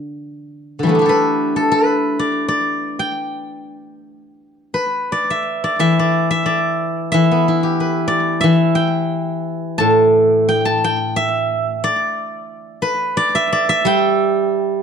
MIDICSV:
0, 0, Header, 1, 2, 480
1, 0, Start_track
1, 0, Tempo, 677201
1, 289, Time_signature, 2, 2, 24, 8
1, 764, Tempo, 647948
1, 2204, Tempo, 696864
1, 4124, Tempo, 657895
1, 6044, Tempo, 688863
1, 7964, Tempo, 657174
1, 9404, Tempo, 707547
1, 10528, End_track
2, 0, Start_track
2, 0, Title_t, "Guzheng"
2, 0, Program_c, 0, 107
2, 561, Note_on_c, 0, 50, 30
2, 588, Note_on_c, 0, 52, 32
2, 590, Note_on_c, 0, 55, 37
2, 614, Note_on_c, 0, 57, 37
2, 631, Note_on_c, 0, 59, 39
2, 672, Note_on_c, 0, 62, 44
2, 702, Note_on_c, 0, 64, 43
2, 714, Note_off_c, 0, 52, 0
2, 720, Note_on_c, 0, 67, 46
2, 745, Note_off_c, 0, 50, 0
2, 749, Note_on_c, 0, 69, 51
2, 774, Note_on_c, 0, 71, 72
2, 792, Note_off_c, 0, 55, 0
2, 1119, Note_off_c, 0, 69, 0
2, 1122, Note_on_c, 0, 69, 63
2, 1233, Note_off_c, 0, 71, 0
2, 1236, Note_on_c, 0, 71, 79
2, 1591, Note_on_c, 0, 74, 78
2, 1803, Note_off_c, 0, 74, 0
2, 1806, Note_on_c, 0, 74, 81
2, 2183, Note_on_c, 0, 79, 76
2, 2443, Note_off_c, 0, 67, 0
2, 2600, Note_off_c, 0, 64, 0
2, 2702, Note_off_c, 0, 62, 0
2, 2708, Note_off_c, 0, 69, 0
2, 2712, Note_off_c, 0, 71, 0
2, 2869, Note_off_c, 0, 59, 0
2, 3009, Note_off_c, 0, 57, 0
2, 3105, Note_off_c, 0, 74, 0
2, 3254, Note_off_c, 0, 79, 0
2, 3387, Note_on_c, 0, 71, 65
2, 3650, Note_on_c, 0, 74, 71
2, 3776, Note_on_c, 0, 76, 69
2, 4004, Note_off_c, 0, 74, 0
2, 4006, Note_on_c, 0, 74, 75
2, 4114, Note_off_c, 0, 76, 0
2, 4114, Note_on_c, 0, 52, 62
2, 4117, Note_on_c, 0, 76, 85
2, 4256, Note_off_c, 0, 74, 0
2, 4259, Note_on_c, 0, 74, 73
2, 4483, Note_off_c, 0, 76, 0
2, 4486, Note_on_c, 0, 76, 82
2, 4594, Note_off_c, 0, 74, 0
2, 4597, Note_on_c, 0, 74, 85
2, 4835, Note_off_c, 0, 71, 0
2, 5075, Note_off_c, 0, 76, 0
2, 5078, Note_on_c, 0, 76, 88
2, 5086, Note_off_c, 0, 52, 0
2, 5094, Note_on_c, 0, 52, 73
2, 5222, Note_on_c, 0, 59, 53
2, 5344, Note_on_c, 0, 64, 54
2, 5453, Note_on_c, 0, 67, 48
2, 5578, Note_on_c, 0, 71, 51
2, 5775, Note_off_c, 0, 74, 0
2, 5778, Note_on_c, 0, 74, 80
2, 6015, Note_off_c, 0, 76, 0
2, 6018, Note_on_c, 0, 76, 85
2, 6031, Note_off_c, 0, 52, 0
2, 6040, Note_on_c, 0, 52, 65
2, 6164, Note_off_c, 0, 59, 0
2, 6260, Note_on_c, 0, 79, 92
2, 6282, Note_off_c, 0, 64, 0
2, 6395, Note_off_c, 0, 67, 0
2, 6519, Note_off_c, 0, 71, 0
2, 6977, Note_on_c, 0, 81, 92
2, 6991, Note_on_c, 0, 45, 61
2, 7076, Note_off_c, 0, 74, 0
2, 7218, Note_off_c, 0, 76, 0
2, 7342, Note_off_c, 0, 79, 0
2, 7468, Note_on_c, 0, 79, 87
2, 7491, Note_off_c, 0, 52, 0
2, 7583, Note_off_c, 0, 81, 0
2, 7585, Note_on_c, 0, 81, 90
2, 7715, Note_off_c, 0, 79, 0
2, 7718, Note_on_c, 0, 79, 89
2, 7941, Note_on_c, 0, 76, 95
2, 8432, Note_off_c, 0, 45, 0
2, 8432, Note_on_c, 0, 74, 92
2, 8624, Note_off_c, 0, 81, 0
2, 8840, Note_off_c, 0, 79, 0
2, 9150, Note_on_c, 0, 71, 83
2, 9195, Note_off_c, 0, 76, 0
2, 9402, Note_off_c, 0, 74, 0
2, 9405, Note_on_c, 0, 74, 104
2, 9527, Note_on_c, 0, 76, 91
2, 9644, Note_off_c, 0, 74, 0
2, 9647, Note_on_c, 0, 74, 96
2, 9756, Note_off_c, 0, 76, 0
2, 9759, Note_on_c, 0, 76, 102
2, 9867, Note_on_c, 0, 55, 77
2, 9877, Note_on_c, 0, 79, 111
2, 10528, Note_off_c, 0, 55, 0
2, 10528, Note_off_c, 0, 71, 0
2, 10528, Note_off_c, 0, 74, 0
2, 10528, Note_off_c, 0, 76, 0
2, 10528, Note_off_c, 0, 79, 0
2, 10528, End_track
0, 0, End_of_file